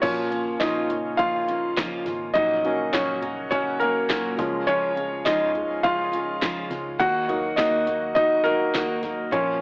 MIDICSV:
0, 0, Header, 1, 6, 480
1, 0, Start_track
1, 0, Key_signature, -5, "minor"
1, 0, Tempo, 581395
1, 22, Time_signature, 4, 2, 24, 8
1, 7937, End_track
2, 0, Start_track
2, 0, Title_t, "Felt piano"
2, 0, Program_c, 0, 0
2, 0, Control_c, 0, 64, 127
2, 13, Note_on_c, 0, 73, 94
2, 21, Note_on_c, 0, 53, 54
2, 26, Note_on_c, 0, 58, 45
2, 32, Note_on_c, 0, 61, 70
2, 33, Control_c, 0, 64, 0
2, 177, Control_c, 0, 64, 127
2, 465, Note_off_c, 0, 73, 0
2, 495, Note_on_c, 0, 75, 78
2, 513, Note_on_c, 0, 63, 61
2, 709, Note_off_c, 0, 53, 0
2, 712, Note_off_c, 0, 58, 0
2, 715, Note_off_c, 0, 61, 0
2, 946, Note_off_c, 0, 75, 0
2, 955, Note_off_c, 0, 63, 0
2, 970, Note_on_c, 0, 77, 101
2, 986, Note_on_c, 0, 65, 79
2, 1904, Note_off_c, 0, 77, 0
2, 1912, Note_off_c, 0, 65, 0
2, 1929, Note_on_c, 0, 75, 100
2, 1944, Note_on_c, 0, 63, 75
2, 1953, Control_c, 0, 64, 0
2, 2078, Control_c, 0, 64, 127
2, 2183, Note_on_c, 0, 54, 55
2, 2190, Note_on_c, 0, 58, 43
2, 2193, Note_on_c, 0, 61, 57
2, 2384, Note_off_c, 0, 75, 0
2, 2391, Note_off_c, 0, 63, 0
2, 2420, Note_on_c, 0, 73, 81
2, 2421, Note_off_c, 0, 61, 0
2, 2434, Note_on_c, 0, 61, 61
2, 2869, Note_off_c, 0, 73, 0
2, 2871, Note_off_c, 0, 54, 0
2, 2874, Note_off_c, 0, 58, 0
2, 2876, Note_off_c, 0, 61, 0
2, 2894, Note_on_c, 0, 73, 96
2, 2909, Note_on_c, 0, 61, 73
2, 3122, Note_off_c, 0, 73, 0
2, 3130, Note_off_c, 0, 61, 0
2, 3135, Note_on_c, 0, 70, 85
2, 3152, Note_on_c, 0, 58, 70
2, 3620, Note_on_c, 0, 53, 52
2, 3623, Note_on_c, 0, 56, 53
2, 3627, Note_on_c, 0, 61, 61
2, 3636, Control_c, 0, 64, 0
2, 3783, Control_c, 0, 64, 127
2, 3835, Note_off_c, 0, 58, 0
2, 3855, Note_on_c, 0, 73, 105
2, 3859, Note_off_c, 0, 61, 0
2, 3871, Note_on_c, 0, 61, 69
2, 3881, Note_off_c, 0, 70, 0
2, 4309, Note_off_c, 0, 53, 0
2, 4310, Note_off_c, 0, 56, 0
2, 4315, Note_off_c, 0, 61, 0
2, 4336, Note_on_c, 0, 75, 80
2, 4354, Note_off_c, 0, 73, 0
2, 4354, Note_on_c, 0, 63, 71
2, 4787, Note_off_c, 0, 75, 0
2, 4795, Note_off_c, 0, 63, 0
2, 4814, Note_on_c, 0, 77, 102
2, 4835, Note_on_c, 0, 65, 83
2, 5756, Note_off_c, 0, 65, 0
2, 5776, Note_on_c, 0, 78, 114
2, 5788, Note_on_c, 0, 66, 85
2, 5794, Control_c, 0, 64, 0
2, 5807, Note_off_c, 0, 77, 0
2, 5932, Control_c, 0, 64, 127
2, 6016, Note_on_c, 0, 54, 54
2, 6017, Note_on_c, 0, 58, 51
2, 6023, Note_on_c, 0, 63, 57
2, 6226, Note_off_c, 0, 78, 0
2, 6232, Note_off_c, 0, 66, 0
2, 6245, Note_on_c, 0, 75, 89
2, 6248, Note_off_c, 0, 63, 0
2, 6261, Note_on_c, 0, 63, 68
2, 6705, Note_off_c, 0, 54, 0
2, 6706, Note_off_c, 0, 58, 0
2, 6708, Note_off_c, 0, 63, 0
2, 6717, Note_off_c, 0, 75, 0
2, 6730, Note_on_c, 0, 75, 104
2, 6744, Note_on_c, 0, 63, 79
2, 6958, Note_off_c, 0, 75, 0
2, 6966, Note_off_c, 0, 63, 0
2, 6967, Note_on_c, 0, 70, 102
2, 6983, Note_on_c, 0, 58, 67
2, 7668, Note_off_c, 0, 58, 0
2, 7694, Note_on_c, 0, 53, 51
2, 7696, Note_on_c, 0, 73, 82
2, 7703, Note_on_c, 0, 58, 47
2, 7704, Note_on_c, 0, 61, 77
2, 7710, Control_c, 0, 64, 0
2, 7715, Note_off_c, 0, 70, 0
2, 7831, Control_c, 0, 64, 127
2, 7937, Note_off_c, 0, 53, 0
2, 7937, Note_off_c, 0, 58, 0
2, 7937, Note_off_c, 0, 61, 0
2, 7937, Note_off_c, 0, 73, 0
2, 7937, End_track
3, 0, Start_track
3, 0, Title_t, "Steel-string acoustic guitar"
3, 0, Program_c, 1, 25
3, 12, Note_on_c, 1, 46, 83
3, 16, Note_on_c, 1, 53, 84
3, 22, Note_on_c, 1, 58, 100
3, 24, Note_on_c, 1, 61, 84
3, 30, Note_on_c, 1, 65, 89
3, 239, Note_off_c, 1, 65, 0
3, 249, Note_on_c, 1, 65, 65
3, 255, Note_off_c, 1, 61, 0
3, 257, Note_off_c, 1, 46, 0
3, 259, Note_off_c, 1, 53, 0
3, 262, Note_off_c, 1, 58, 0
3, 265, Note_on_c, 1, 61, 52
3, 277, Note_on_c, 1, 58, 41
3, 496, Note_off_c, 1, 58, 0
3, 496, Note_off_c, 1, 65, 0
3, 497, Note_on_c, 1, 46, 82
3, 502, Note_off_c, 1, 61, 0
3, 503, Note_on_c, 1, 53, 82
3, 506, Note_on_c, 1, 58, 83
3, 511, Note_on_c, 1, 61, 91
3, 512, Note_on_c, 1, 65, 89
3, 729, Note_off_c, 1, 65, 0
3, 739, Note_on_c, 1, 65, 62
3, 740, Note_off_c, 1, 46, 0
3, 741, Note_off_c, 1, 61, 0
3, 743, Note_off_c, 1, 53, 0
3, 745, Note_off_c, 1, 58, 0
3, 751, Note_on_c, 1, 61, 52
3, 761, Note_on_c, 1, 58, 47
3, 974, Note_off_c, 1, 58, 0
3, 974, Note_on_c, 1, 53, 62
3, 981, Note_off_c, 1, 65, 0
3, 984, Note_on_c, 1, 58, 65
3, 985, Note_off_c, 1, 61, 0
3, 995, Note_on_c, 1, 61, 73
3, 1005, Note_on_c, 1, 65, 70
3, 1209, Note_off_c, 1, 65, 0
3, 1219, Note_off_c, 1, 53, 0
3, 1219, Note_on_c, 1, 65, 62
3, 1222, Note_off_c, 1, 61, 0
3, 1224, Note_off_c, 1, 58, 0
3, 1232, Note_on_c, 1, 61, 57
3, 1246, Note_on_c, 1, 58, 45
3, 1455, Note_off_c, 1, 58, 0
3, 1456, Note_on_c, 1, 46, 88
3, 1461, Note_off_c, 1, 65, 0
3, 1463, Note_off_c, 1, 61, 0
3, 1465, Note_on_c, 1, 53, 91
3, 1465, Note_on_c, 1, 58, 85
3, 1473, Note_on_c, 1, 61, 92
3, 1475, Note_on_c, 1, 65, 96
3, 1686, Note_off_c, 1, 65, 0
3, 1696, Note_on_c, 1, 65, 48
3, 1700, Note_off_c, 1, 46, 0
3, 1702, Note_off_c, 1, 61, 0
3, 1704, Note_off_c, 1, 53, 0
3, 1704, Note_off_c, 1, 58, 0
3, 1712, Note_on_c, 1, 61, 48
3, 1725, Note_on_c, 1, 58, 39
3, 1935, Note_on_c, 1, 46, 87
3, 1937, Note_off_c, 1, 58, 0
3, 1940, Note_off_c, 1, 65, 0
3, 1941, Note_off_c, 1, 61, 0
3, 1941, Note_on_c, 1, 54, 88
3, 1947, Note_on_c, 1, 58, 92
3, 1951, Note_on_c, 1, 61, 96
3, 1959, Note_on_c, 1, 66, 87
3, 2167, Note_off_c, 1, 66, 0
3, 2177, Note_on_c, 1, 66, 56
3, 2180, Note_off_c, 1, 46, 0
3, 2182, Note_off_c, 1, 61, 0
3, 2183, Note_off_c, 1, 54, 0
3, 2186, Note_off_c, 1, 58, 0
3, 2192, Note_on_c, 1, 61, 56
3, 2204, Note_on_c, 1, 58, 56
3, 2416, Note_on_c, 1, 46, 96
3, 2418, Note_off_c, 1, 58, 0
3, 2420, Note_off_c, 1, 66, 0
3, 2423, Note_off_c, 1, 61, 0
3, 2423, Note_on_c, 1, 54, 88
3, 2428, Note_on_c, 1, 58, 92
3, 2433, Note_on_c, 1, 61, 84
3, 2435, Note_on_c, 1, 66, 89
3, 2645, Note_off_c, 1, 66, 0
3, 2655, Note_on_c, 1, 66, 62
3, 2660, Note_off_c, 1, 46, 0
3, 2660, Note_off_c, 1, 61, 0
3, 2663, Note_off_c, 1, 54, 0
3, 2666, Note_off_c, 1, 58, 0
3, 2669, Note_on_c, 1, 61, 58
3, 2683, Note_on_c, 1, 58, 47
3, 2886, Note_on_c, 1, 54, 61
3, 2889, Note_off_c, 1, 58, 0
3, 2897, Note_off_c, 1, 61, 0
3, 2899, Note_off_c, 1, 66, 0
3, 2899, Note_on_c, 1, 58, 64
3, 2907, Note_on_c, 1, 61, 76
3, 2916, Note_on_c, 1, 66, 63
3, 3129, Note_off_c, 1, 66, 0
3, 3135, Note_off_c, 1, 54, 0
3, 3139, Note_on_c, 1, 66, 60
3, 3141, Note_off_c, 1, 58, 0
3, 3142, Note_off_c, 1, 61, 0
3, 3152, Note_on_c, 1, 61, 61
3, 3163, Note_on_c, 1, 58, 50
3, 3372, Note_on_c, 1, 46, 90
3, 3374, Note_off_c, 1, 58, 0
3, 3376, Note_off_c, 1, 61, 0
3, 3378, Note_on_c, 1, 54, 75
3, 3381, Note_off_c, 1, 66, 0
3, 3384, Note_on_c, 1, 58, 90
3, 3386, Note_on_c, 1, 61, 98
3, 3390, Note_on_c, 1, 66, 101
3, 3602, Note_off_c, 1, 66, 0
3, 3605, Note_on_c, 1, 65, 59
3, 3610, Note_off_c, 1, 61, 0
3, 3618, Note_off_c, 1, 46, 0
3, 3620, Note_on_c, 1, 61, 49
3, 3621, Note_off_c, 1, 54, 0
3, 3624, Note_off_c, 1, 58, 0
3, 3632, Note_on_c, 1, 56, 44
3, 3851, Note_on_c, 1, 49, 89
3, 3852, Note_off_c, 1, 56, 0
3, 3855, Note_off_c, 1, 65, 0
3, 3857, Note_off_c, 1, 61, 0
3, 3857, Note_on_c, 1, 53, 90
3, 3862, Note_on_c, 1, 56, 80
3, 3867, Note_on_c, 1, 61, 83
3, 3873, Note_on_c, 1, 65, 91
3, 4076, Note_off_c, 1, 65, 0
3, 4086, Note_on_c, 1, 65, 63
3, 4094, Note_off_c, 1, 61, 0
3, 4097, Note_off_c, 1, 49, 0
3, 4100, Note_off_c, 1, 53, 0
3, 4103, Note_off_c, 1, 56, 0
3, 4104, Note_on_c, 1, 61, 54
3, 4116, Note_on_c, 1, 56, 50
3, 4331, Note_off_c, 1, 56, 0
3, 4331, Note_on_c, 1, 49, 76
3, 4333, Note_off_c, 1, 61, 0
3, 4335, Note_off_c, 1, 65, 0
3, 4338, Note_on_c, 1, 53, 83
3, 4341, Note_on_c, 1, 56, 92
3, 4343, Note_on_c, 1, 61, 82
3, 4349, Note_on_c, 1, 65, 98
3, 4562, Note_off_c, 1, 65, 0
3, 4572, Note_on_c, 1, 65, 61
3, 4575, Note_off_c, 1, 61, 0
3, 4577, Note_off_c, 1, 49, 0
3, 4581, Note_off_c, 1, 53, 0
3, 4582, Note_off_c, 1, 56, 0
3, 4584, Note_on_c, 1, 61, 54
3, 4597, Note_on_c, 1, 56, 49
3, 4810, Note_off_c, 1, 56, 0
3, 4811, Note_on_c, 1, 53, 59
3, 4816, Note_off_c, 1, 61, 0
3, 4818, Note_off_c, 1, 65, 0
3, 4820, Note_on_c, 1, 56, 62
3, 4826, Note_on_c, 1, 61, 69
3, 4833, Note_on_c, 1, 65, 63
3, 5040, Note_off_c, 1, 65, 0
3, 5050, Note_on_c, 1, 65, 60
3, 5057, Note_off_c, 1, 53, 0
3, 5057, Note_off_c, 1, 61, 0
3, 5062, Note_off_c, 1, 56, 0
3, 5067, Note_on_c, 1, 61, 59
3, 5079, Note_on_c, 1, 56, 54
3, 5296, Note_off_c, 1, 65, 0
3, 5298, Note_on_c, 1, 49, 79
3, 5299, Note_off_c, 1, 56, 0
3, 5301, Note_on_c, 1, 53, 95
3, 5303, Note_off_c, 1, 61, 0
3, 5309, Note_on_c, 1, 56, 83
3, 5313, Note_on_c, 1, 61, 97
3, 5316, Note_on_c, 1, 65, 97
3, 5522, Note_off_c, 1, 65, 0
3, 5532, Note_on_c, 1, 65, 54
3, 5538, Note_off_c, 1, 61, 0
3, 5540, Note_off_c, 1, 49, 0
3, 5542, Note_off_c, 1, 53, 0
3, 5546, Note_off_c, 1, 56, 0
3, 5548, Note_on_c, 1, 61, 45
3, 5561, Note_on_c, 1, 56, 39
3, 5769, Note_on_c, 1, 51, 88
3, 5772, Note_off_c, 1, 56, 0
3, 5775, Note_on_c, 1, 58, 98
3, 5777, Note_off_c, 1, 65, 0
3, 5780, Note_off_c, 1, 61, 0
3, 5783, Note_on_c, 1, 63, 89
3, 5787, Note_on_c, 1, 66, 94
3, 6003, Note_off_c, 1, 66, 0
3, 6013, Note_on_c, 1, 66, 59
3, 6016, Note_off_c, 1, 51, 0
3, 6019, Note_off_c, 1, 58, 0
3, 6019, Note_off_c, 1, 63, 0
3, 6029, Note_on_c, 1, 63, 61
3, 6039, Note_on_c, 1, 58, 57
3, 6245, Note_off_c, 1, 58, 0
3, 6247, Note_on_c, 1, 51, 77
3, 6252, Note_off_c, 1, 63, 0
3, 6255, Note_on_c, 1, 58, 91
3, 6257, Note_off_c, 1, 66, 0
3, 6262, Note_on_c, 1, 63, 84
3, 6266, Note_on_c, 1, 66, 100
3, 6477, Note_off_c, 1, 66, 0
3, 6487, Note_on_c, 1, 66, 62
3, 6494, Note_off_c, 1, 51, 0
3, 6495, Note_off_c, 1, 63, 0
3, 6498, Note_off_c, 1, 58, 0
3, 6505, Note_on_c, 1, 63, 52
3, 6515, Note_on_c, 1, 58, 54
3, 6734, Note_off_c, 1, 66, 0
3, 6734, Note_on_c, 1, 51, 59
3, 6736, Note_off_c, 1, 58, 0
3, 6743, Note_off_c, 1, 63, 0
3, 6745, Note_on_c, 1, 58, 58
3, 6754, Note_on_c, 1, 63, 67
3, 6760, Note_on_c, 1, 66, 80
3, 6958, Note_off_c, 1, 66, 0
3, 6968, Note_on_c, 1, 66, 62
3, 6974, Note_off_c, 1, 63, 0
3, 6978, Note_off_c, 1, 51, 0
3, 6983, Note_off_c, 1, 58, 0
3, 6984, Note_on_c, 1, 63, 51
3, 6998, Note_on_c, 1, 58, 48
3, 7214, Note_off_c, 1, 66, 0
3, 7218, Note_off_c, 1, 58, 0
3, 7220, Note_on_c, 1, 51, 78
3, 7222, Note_off_c, 1, 63, 0
3, 7228, Note_on_c, 1, 58, 83
3, 7233, Note_on_c, 1, 63, 90
3, 7236, Note_on_c, 1, 66, 99
3, 7445, Note_off_c, 1, 66, 0
3, 7455, Note_on_c, 1, 66, 49
3, 7457, Note_off_c, 1, 63, 0
3, 7461, Note_off_c, 1, 51, 0
3, 7464, Note_off_c, 1, 58, 0
3, 7467, Note_on_c, 1, 63, 50
3, 7481, Note_on_c, 1, 58, 47
3, 7687, Note_on_c, 1, 46, 83
3, 7688, Note_off_c, 1, 58, 0
3, 7695, Note_on_c, 1, 53, 82
3, 7698, Note_off_c, 1, 66, 0
3, 7698, Note_on_c, 1, 58, 80
3, 7701, Note_off_c, 1, 63, 0
3, 7704, Note_on_c, 1, 61, 87
3, 7707, Note_on_c, 1, 65, 90
3, 7914, Note_off_c, 1, 65, 0
3, 7927, Note_off_c, 1, 61, 0
3, 7934, Note_off_c, 1, 46, 0
3, 7937, Note_off_c, 1, 53, 0
3, 7937, Note_off_c, 1, 58, 0
3, 7937, End_track
4, 0, Start_track
4, 0, Title_t, "Analog synth pad"
4, 0, Program_c, 2, 89
4, 11, Note_on_c, 2, 53, 70
4, 11, Note_on_c, 2, 65, 87
4, 16, Note_on_c, 2, 58, 66
4, 19, Note_on_c, 2, 49, 77
4, 1919, Note_off_c, 2, 53, 0
4, 1919, Note_off_c, 2, 65, 0
4, 1935, Note_on_c, 2, 54, 67
4, 1942, Note_on_c, 2, 66, 91
4, 3588, Note_off_c, 2, 58, 0
4, 3603, Note_off_c, 2, 54, 0
4, 3606, Note_off_c, 2, 66, 0
4, 3621, Note_on_c, 2, 53, 67
4, 3621, Note_on_c, 2, 56, 76
4, 3627, Note_on_c, 2, 65, 86
4, 5748, Note_off_c, 2, 49, 0
4, 5759, Note_off_c, 2, 53, 0
4, 5760, Note_off_c, 2, 56, 0
4, 5763, Note_off_c, 2, 65, 0
4, 5777, Note_on_c, 2, 66, 85
4, 5780, Note_on_c, 2, 51, 77
4, 5782, Note_on_c, 2, 54, 70
4, 5782, Note_on_c, 2, 58, 68
4, 7679, Note_off_c, 2, 66, 0
4, 7680, Note_off_c, 2, 51, 0
4, 7681, Note_off_c, 2, 54, 0
4, 7708, Note_on_c, 2, 65, 83
4, 7709, Note_on_c, 2, 53, 73
4, 7714, Note_on_c, 2, 49, 73
4, 7937, Note_off_c, 2, 49, 0
4, 7937, Note_off_c, 2, 53, 0
4, 7937, Note_off_c, 2, 58, 0
4, 7937, Note_off_c, 2, 65, 0
4, 7937, End_track
5, 0, Start_track
5, 0, Title_t, "Picked electric bass"
5, 0, Program_c, 3, 34
5, 20, Note_on_c, 3, 34, 81
5, 469, Note_off_c, 3, 34, 0
5, 502, Note_on_c, 3, 34, 104
5, 1670, Note_off_c, 3, 34, 0
5, 1701, Note_on_c, 3, 32, 85
5, 1925, Note_off_c, 3, 32, 0
5, 1943, Note_on_c, 3, 34, 90
5, 2391, Note_off_c, 3, 34, 0
5, 2422, Note_on_c, 3, 34, 100
5, 3590, Note_off_c, 3, 34, 0
5, 3624, Note_on_c, 3, 37, 90
5, 4311, Note_off_c, 3, 37, 0
5, 4342, Note_on_c, 3, 37, 112
5, 5509, Note_off_c, 3, 37, 0
5, 5537, Note_on_c, 3, 37, 79
5, 5763, Note_off_c, 3, 37, 0
5, 5781, Note_on_c, 3, 39, 93
5, 6229, Note_off_c, 3, 39, 0
5, 6261, Note_on_c, 3, 39, 105
5, 7667, Note_off_c, 3, 39, 0
5, 7698, Note_on_c, 3, 34, 93
5, 7937, Note_off_c, 3, 34, 0
5, 7937, End_track
6, 0, Start_track
6, 0, Title_t, "Drums"
6, 22, Note_on_c, 9, 42, 75
6, 22, Note_on_c, 9, 49, 83
6, 23, Note_on_c, 9, 36, 103
6, 104, Note_off_c, 9, 49, 0
6, 105, Note_off_c, 9, 36, 0
6, 105, Note_off_c, 9, 42, 0
6, 264, Note_on_c, 9, 42, 58
6, 347, Note_off_c, 9, 42, 0
6, 502, Note_on_c, 9, 36, 86
6, 502, Note_on_c, 9, 38, 98
6, 502, Note_on_c, 9, 39, 76
6, 503, Note_on_c, 9, 42, 82
6, 509, Note_off_c, 9, 39, 0
6, 509, Note_on_c, 9, 39, 84
6, 584, Note_off_c, 9, 38, 0
6, 585, Note_off_c, 9, 36, 0
6, 585, Note_off_c, 9, 42, 0
6, 591, Note_off_c, 9, 39, 0
6, 744, Note_on_c, 9, 42, 66
6, 745, Note_on_c, 9, 43, 54
6, 827, Note_off_c, 9, 42, 0
6, 828, Note_off_c, 9, 43, 0
6, 983, Note_on_c, 9, 36, 103
6, 985, Note_on_c, 9, 42, 81
6, 1066, Note_off_c, 9, 36, 0
6, 1067, Note_off_c, 9, 42, 0
6, 1227, Note_on_c, 9, 42, 63
6, 1309, Note_off_c, 9, 42, 0
6, 1461, Note_on_c, 9, 42, 73
6, 1463, Note_on_c, 9, 38, 113
6, 1464, Note_on_c, 9, 39, 84
6, 1465, Note_on_c, 9, 36, 110
6, 1476, Note_off_c, 9, 39, 0
6, 1476, Note_on_c, 9, 39, 88
6, 1544, Note_off_c, 9, 42, 0
6, 1546, Note_off_c, 9, 38, 0
6, 1547, Note_off_c, 9, 36, 0
6, 1559, Note_off_c, 9, 39, 0
6, 1700, Note_on_c, 9, 42, 64
6, 1702, Note_on_c, 9, 38, 32
6, 1783, Note_off_c, 9, 42, 0
6, 1784, Note_off_c, 9, 38, 0
6, 1944, Note_on_c, 9, 36, 98
6, 1945, Note_on_c, 9, 42, 79
6, 2026, Note_off_c, 9, 36, 0
6, 2027, Note_off_c, 9, 42, 0
6, 2186, Note_on_c, 9, 42, 61
6, 2269, Note_off_c, 9, 42, 0
6, 2423, Note_on_c, 9, 36, 94
6, 2425, Note_on_c, 9, 38, 104
6, 2425, Note_on_c, 9, 39, 83
6, 2426, Note_on_c, 9, 42, 77
6, 2429, Note_off_c, 9, 39, 0
6, 2429, Note_on_c, 9, 39, 76
6, 2505, Note_off_c, 9, 36, 0
6, 2507, Note_off_c, 9, 38, 0
6, 2508, Note_off_c, 9, 42, 0
6, 2512, Note_off_c, 9, 39, 0
6, 2663, Note_on_c, 9, 42, 64
6, 2664, Note_on_c, 9, 43, 58
6, 2745, Note_off_c, 9, 42, 0
6, 2746, Note_off_c, 9, 43, 0
6, 2903, Note_on_c, 9, 36, 97
6, 2906, Note_on_c, 9, 42, 83
6, 2986, Note_off_c, 9, 36, 0
6, 2988, Note_off_c, 9, 42, 0
6, 3143, Note_on_c, 9, 42, 69
6, 3226, Note_off_c, 9, 42, 0
6, 3381, Note_on_c, 9, 42, 76
6, 3383, Note_on_c, 9, 38, 110
6, 3384, Note_on_c, 9, 39, 90
6, 3385, Note_on_c, 9, 36, 111
6, 3399, Note_off_c, 9, 39, 0
6, 3399, Note_on_c, 9, 39, 74
6, 3464, Note_off_c, 9, 42, 0
6, 3466, Note_off_c, 9, 38, 0
6, 3468, Note_off_c, 9, 36, 0
6, 3481, Note_off_c, 9, 39, 0
6, 3621, Note_on_c, 9, 42, 64
6, 3623, Note_on_c, 9, 36, 100
6, 3623, Note_on_c, 9, 38, 36
6, 3704, Note_off_c, 9, 42, 0
6, 3705, Note_off_c, 9, 38, 0
6, 3706, Note_off_c, 9, 36, 0
6, 3865, Note_on_c, 9, 42, 71
6, 3947, Note_off_c, 9, 42, 0
6, 4105, Note_on_c, 9, 42, 62
6, 4188, Note_off_c, 9, 42, 0
6, 4342, Note_on_c, 9, 38, 98
6, 4342, Note_on_c, 9, 39, 70
6, 4343, Note_on_c, 9, 36, 93
6, 4343, Note_on_c, 9, 42, 87
6, 4348, Note_off_c, 9, 39, 0
6, 4348, Note_on_c, 9, 39, 81
6, 4424, Note_off_c, 9, 38, 0
6, 4425, Note_off_c, 9, 42, 0
6, 4426, Note_off_c, 9, 36, 0
6, 4431, Note_off_c, 9, 39, 0
6, 4582, Note_on_c, 9, 42, 61
6, 4583, Note_on_c, 9, 43, 64
6, 4665, Note_off_c, 9, 42, 0
6, 4666, Note_off_c, 9, 43, 0
6, 4821, Note_on_c, 9, 42, 76
6, 4823, Note_on_c, 9, 36, 103
6, 4904, Note_off_c, 9, 42, 0
6, 4905, Note_off_c, 9, 36, 0
6, 5063, Note_on_c, 9, 42, 70
6, 5146, Note_off_c, 9, 42, 0
6, 5299, Note_on_c, 9, 42, 78
6, 5302, Note_on_c, 9, 38, 109
6, 5302, Note_on_c, 9, 39, 90
6, 5304, Note_on_c, 9, 36, 117
6, 5313, Note_off_c, 9, 39, 0
6, 5313, Note_on_c, 9, 39, 86
6, 5382, Note_off_c, 9, 42, 0
6, 5384, Note_off_c, 9, 38, 0
6, 5386, Note_off_c, 9, 36, 0
6, 5396, Note_off_c, 9, 39, 0
6, 5538, Note_on_c, 9, 42, 64
6, 5540, Note_on_c, 9, 38, 34
6, 5621, Note_off_c, 9, 42, 0
6, 5622, Note_off_c, 9, 38, 0
6, 5780, Note_on_c, 9, 42, 80
6, 5782, Note_on_c, 9, 36, 113
6, 5863, Note_off_c, 9, 42, 0
6, 5865, Note_off_c, 9, 36, 0
6, 6022, Note_on_c, 9, 42, 56
6, 6105, Note_off_c, 9, 42, 0
6, 6260, Note_on_c, 9, 38, 104
6, 6260, Note_on_c, 9, 39, 73
6, 6261, Note_on_c, 9, 36, 95
6, 6261, Note_on_c, 9, 42, 91
6, 6263, Note_off_c, 9, 39, 0
6, 6263, Note_on_c, 9, 39, 78
6, 6342, Note_off_c, 9, 38, 0
6, 6343, Note_off_c, 9, 42, 0
6, 6344, Note_off_c, 9, 36, 0
6, 6345, Note_off_c, 9, 39, 0
6, 6500, Note_on_c, 9, 42, 70
6, 6501, Note_on_c, 9, 43, 59
6, 6582, Note_off_c, 9, 42, 0
6, 6583, Note_off_c, 9, 43, 0
6, 6740, Note_on_c, 9, 36, 102
6, 6741, Note_on_c, 9, 42, 88
6, 6823, Note_off_c, 9, 36, 0
6, 6824, Note_off_c, 9, 42, 0
6, 6983, Note_on_c, 9, 42, 62
6, 7066, Note_off_c, 9, 42, 0
6, 7219, Note_on_c, 9, 42, 74
6, 7222, Note_on_c, 9, 36, 108
6, 7222, Note_on_c, 9, 38, 112
6, 7222, Note_on_c, 9, 39, 87
6, 7234, Note_off_c, 9, 39, 0
6, 7234, Note_on_c, 9, 39, 86
6, 7302, Note_off_c, 9, 42, 0
6, 7304, Note_off_c, 9, 38, 0
6, 7305, Note_off_c, 9, 36, 0
6, 7317, Note_off_c, 9, 39, 0
6, 7455, Note_on_c, 9, 42, 58
6, 7456, Note_on_c, 9, 38, 34
6, 7456, Note_on_c, 9, 43, 55
6, 7538, Note_off_c, 9, 42, 0
6, 7539, Note_off_c, 9, 38, 0
6, 7539, Note_off_c, 9, 43, 0
6, 7700, Note_on_c, 9, 36, 106
6, 7700, Note_on_c, 9, 42, 86
6, 7782, Note_off_c, 9, 36, 0
6, 7782, Note_off_c, 9, 42, 0
6, 7937, End_track
0, 0, End_of_file